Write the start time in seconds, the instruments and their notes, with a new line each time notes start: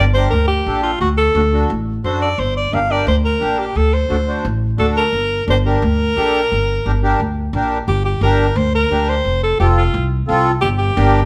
0.00 upright bass G1
0.14 accordion D4 G4 A#4, alto saxophone C5
0.30 upright bass D2, alto saxophone A#4
0.48 alto saxophone G4
0.66 upright bass A#1, accordion D4 G4 A4
0.83 alto saxophone F4
1.01 upright bass D2, alto saxophone F#4
1.18 alto saxophone A4
1.35 upright bass D2, accordion D4 F#4 A4
1.53 accordion D4 F#4 A4
1.70 upright bass A1
2.04 upright bass F#2, accordion D4 F#4 A4, alto saxophone C5
2.22 alto saxophone D5
2.38 upright bass G1, alto saxophone C5
2.57 alto saxophone D5
2.72 upright bass G1, accordion D4 G4 A#4, alto saxophone F5
2.90 accordion D4 G4 A#4, alto saxophone D5
3.07 upright bass D2, alto saxophone C5
3.25 alto saxophone A#4
3.40 upright bass A#1, accordion D4 G4 A#4
3.59 alto saxophone G4
3.75 upright bass D2, alto saxophone A4
3.94 alto saxophone C5
4.10 upright bass D2, accordion D4 F#4 A4
4.27 accordion D4 F#4 C5
4.45 upright bass A1
4.78 upright bass D2, accordion D4 F#4 A4, alto saxophone A4
4.97 alto saxophone A#4
5.13 upright bass G1
5.48 upright bass G1, accordion D4 G4 A#4, alto saxophone C5
5.66 accordion D4 G4 A#4, alto saxophone A#4
5.82 upright bass D2
6.17 upright bass A#1, accordion D4 G4 A4
6.52 upright bass G1
6.86 upright bass G1, accordion D4 G4 A#4
7.03 accordion D4 G4 A#4
7.20 upright bass D2
7.53 upright bass A#1, accordion D4 G4 A#4
7.88 upright bass G1, alto saxophone G4
8.05 alto saxophone G4
8.21 upright bass G1, accordion D4 G4 A#4, alto saxophone A#4
8.56 upright bass D2, alto saxophone C5
8.75 alto saxophone A#4
8.91 upright bass D2, accordion D4 G4 A#4
9.09 alto saxophone C5
9.25 upright bass F1
9.43 alto saxophone A4
9.59 upright bass F1, accordion C4 F4 A4, alto saxophone G4
9.77 alto saxophone F4
9.94 upright bass C2
10.27 upright bass C2, accordion C4 F4 A4
10.61 upright bass G1, alto saxophone G4
10.78 alto saxophone G4
10.96 upright bass G1, accordion D4 G4 A#4